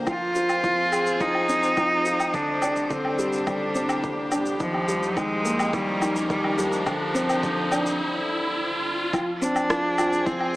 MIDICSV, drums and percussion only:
0, 0, Header, 1, 2, 480
1, 0, Start_track
1, 0, Tempo, 566038
1, 64, Time_signature, 4, 2, 24, 8
1, 8957, End_track
2, 0, Start_track
2, 0, Title_t, "Drums"
2, 57, Note_on_c, 9, 77, 58
2, 57, Note_on_c, 9, 82, 30
2, 61, Note_on_c, 9, 36, 99
2, 142, Note_off_c, 9, 77, 0
2, 142, Note_off_c, 9, 82, 0
2, 146, Note_off_c, 9, 36, 0
2, 297, Note_on_c, 9, 82, 73
2, 382, Note_off_c, 9, 82, 0
2, 417, Note_on_c, 9, 77, 54
2, 417, Note_on_c, 9, 82, 37
2, 502, Note_off_c, 9, 77, 0
2, 502, Note_off_c, 9, 82, 0
2, 541, Note_on_c, 9, 82, 28
2, 542, Note_on_c, 9, 36, 96
2, 626, Note_off_c, 9, 82, 0
2, 627, Note_off_c, 9, 36, 0
2, 784, Note_on_c, 9, 77, 60
2, 784, Note_on_c, 9, 82, 67
2, 868, Note_off_c, 9, 77, 0
2, 868, Note_off_c, 9, 82, 0
2, 902, Note_on_c, 9, 82, 42
2, 986, Note_off_c, 9, 82, 0
2, 1020, Note_on_c, 9, 82, 30
2, 1022, Note_on_c, 9, 36, 101
2, 1105, Note_off_c, 9, 82, 0
2, 1107, Note_off_c, 9, 36, 0
2, 1141, Note_on_c, 9, 77, 61
2, 1226, Note_off_c, 9, 77, 0
2, 1263, Note_on_c, 9, 82, 72
2, 1347, Note_off_c, 9, 82, 0
2, 1383, Note_on_c, 9, 82, 42
2, 1468, Note_off_c, 9, 82, 0
2, 1501, Note_on_c, 9, 77, 61
2, 1501, Note_on_c, 9, 82, 27
2, 1503, Note_on_c, 9, 36, 101
2, 1586, Note_off_c, 9, 77, 0
2, 1586, Note_off_c, 9, 82, 0
2, 1588, Note_off_c, 9, 36, 0
2, 1742, Note_on_c, 9, 82, 69
2, 1826, Note_off_c, 9, 82, 0
2, 1864, Note_on_c, 9, 77, 61
2, 1864, Note_on_c, 9, 82, 40
2, 1949, Note_off_c, 9, 77, 0
2, 1949, Note_off_c, 9, 82, 0
2, 1982, Note_on_c, 9, 82, 30
2, 1984, Note_on_c, 9, 36, 89
2, 2067, Note_off_c, 9, 82, 0
2, 2069, Note_off_c, 9, 36, 0
2, 2221, Note_on_c, 9, 77, 66
2, 2221, Note_on_c, 9, 82, 73
2, 2306, Note_off_c, 9, 77, 0
2, 2306, Note_off_c, 9, 82, 0
2, 2341, Note_on_c, 9, 82, 33
2, 2426, Note_off_c, 9, 82, 0
2, 2463, Note_on_c, 9, 82, 30
2, 2464, Note_on_c, 9, 36, 97
2, 2548, Note_off_c, 9, 82, 0
2, 2549, Note_off_c, 9, 36, 0
2, 2584, Note_on_c, 9, 77, 62
2, 2669, Note_off_c, 9, 77, 0
2, 2702, Note_on_c, 9, 82, 72
2, 2787, Note_off_c, 9, 82, 0
2, 2821, Note_on_c, 9, 82, 42
2, 2906, Note_off_c, 9, 82, 0
2, 2941, Note_on_c, 9, 77, 61
2, 2941, Note_on_c, 9, 82, 29
2, 2944, Note_on_c, 9, 36, 92
2, 3026, Note_off_c, 9, 77, 0
2, 3026, Note_off_c, 9, 82, 0
2, 3029, Note_off_c, 9, 36, 0
2, 3180, Note_on_c, 9, 82, 69
2, 3265, Note_off_c, 9, 82, 0
2, 3300, Note_on_c, 9, 77, 65
2, 3300, Note_on_c, 9, 82, 39
2, 3385, Note_off_c, 9, 77, 0
2, 3385, Note_off_c, 9, 82, 0
2, 3422, Note_on_c, 9, 82, 28
2, 3423, Note_on_c, 9, 36, 99
2, 3507, Note_off_c, 9, 82, 0
2, 3508, Note_off_c, 9, 36, 0
2, 3660, Note_on_c, 9, 77, 66
2, 3660, Note_on_c, 9, 82, 69
2, 3745, Note_off_c, 9, 77, 0
2, 3745, Note_off_c, 9, 82, 0
2, 3779, Note_on_c, 9, 82, 39
2, 3864, Note_off_c, 9, 82, 0
2, 3900, Note_on_c, 9, 82, 29
2, 3903, Note_on_c, 9, 36, 98
2, 3985, Note_off_c, 9, 82, 0
2, 3987, Note_off_c, 9, 36, 0
2, 4021, Note_on_c, 9, 77, 60
2, 4106, Note_off_c, 9, 77, 0
2, 4142, Note_on_c, 9, 82, 72
2, 4227, Note_off_c, 9, 82, 0
2, 4264, Note_on_c, 9, 82, 35
2, 4349, Note_off_c, 9, 82, 0
2, 4382, Note_on_c, 9, 36, 100
2, 4383, Note_on_c, 9, 77, 65
2, 4383, Note_on_c, 9, 82, 29
2, 4467, Note_off_c, 9, 36, 0
2, 4468, Note_off_c, 9, 77, 0
2, 4468, Note_off_c, 9, 82, 0
2, 4623, Note_on_c, 9, 82, 75
2, 4708, Note_off_c, 9, 82, 0
2, 4744, Note_on_c, 9, 77, 74
2, 4744, Note_on_c, 9, 82, 41
2, 4829, Note_off_c, 9, 77, 0
2, 4829, Note_off_c, 9, 82, 0
2, 4862, Note_on_c, 9, 36, 100
2, 4863, Note_on_c, 9, 82, 28
2, 4947, Note_off_c, 9, 36, 0
2, 4948, Note_off_c, 9, 82, 0
2, 5102, Note_on_c, 9, 77, 66
2, 5102, Note_on_c, 9, 82, 69
2, 5187, Note_off_c, 9, 77, 0
2, 5187, Note_off_c, 9, 82, 0
2, 5223, Note_on_c, 9, 82, 43
2, 5307, Note_off_c, 9, 82, 0
2, 5343, Note_on_c, 9, 36, 105
2, 5343, Note_on_c, 9, 82, 27
2, 5427, Note_off_c, 9, 36, 0
2, 5428, Note_off_c, 9, 82, 0
2, 5463, Note_on_c, 9, 77, 72
2, 5548, Note_off_c, 9, 77, 0
2, 5583, Note_on_c, 9, 82, 72
2, 5668, Note_off_c, 9, 82, 0
2, 5702, Note_on_c, 9, 82, 42
2, 5787, Note_off_c, 9, 82, 0
2, 5821, Note_on_c, 9, 77, 68
2, 5821, Note_on_c, 9, 82, 31
2, 5823, Note_on_c, 9, 36, 98
2, 5906, Note_off_c, 9, 77, 0
2, 5906, Note_off_c, 9, 82, 0
2, 5907, Note_off_c, 9, 36, 0
2, 6063, Note_on_c, 9, 82, 75
2, 6148, Note_off_c, 9, 82, 0
2, 6185, Note_on_c, 9, 77, 61
2, 6185, Note_on_c, 9, 82, 37
2, 6270, Note_off_c, 9, 77, 0
2, 6270, Note_off_c, 9, 82, 0
2, 6303, Note_on_c, 9, 36, 99
2, 6304, Note_on_c, 9, 82, 32
2, 6388, Note_off_c, 9, 36, 0
2, 6389, Note_off_c, 9, 82, 0
2, 6545, Note_on_c, 9, 77, 70
2, 6545, Note_on_c, 9, 82, 74
2, 6629, Note_off_c, 9, 77, 0
2, 6629, Note_off_c, 9, 82, 0
2, 6667, Note_on_c, 9, 82, 41
2, 6752, Note_off_c, 9, 82, 0
2, 7746, Note_on_c, 9, 36, 101
2, 7749, Note_on_c, 9, 77, 68
2, 7749, Note_on_c, 9, 82, 31
2, 7830, Note_off_c, 9, 36, 0
2, 7834, Note_off_c, 9, 77, 0
2, 7834, Note_off_c, 9, 82, 0
2, 7989, Note_on_c, 9, 82, 80
2, 8073, Note_off_c, 9, 82, 0
2, 8105, Note_on_c, 9, 77, 60
2, 8105, Note_on_c, 9, 82, 39
2, 8190, Note_off_c, 9, 77, 0
2, 8190, Note_off_c, 9, 82, 0
2, 8226, Note_on_c, 9, 36, 101
2, 8227, Note_on_c, 9, 37, 100
2, 8227, Note_on_c, 9, 82, 32
2, 8310, Note_off_c, 9, 36, 0
2, 8312, Note_off_c, 9, 37, 0
2, 8312, Note_off_c, 9, 82, 0
2, 8465, Note_on_c, 9, 77, 72
2, 8465, Note_on_c, 9, 82, 71
2, 8550, Note_off_c, 9, 77, 0
2, 8550, Note_off_c, 9, 82, 0
2, 8587, Note_on_c, 9, 82, 44
2, 8672, Note_off_c, 9, 82, 0
2, 8705, Note_on_c, 9, 36, 103
2, 8705, Note_on_c, 9, 82, 29
2, 8790, Note_off_c, 9, 36, 0
2, 8790, Note_off_c, 9, 82, 0
2, 8824, Note_on_c, 9, 77, 66
2, 8909, Note_off_c, 9, 77, 0
2, 8957, End_track
0, 0, End_of_file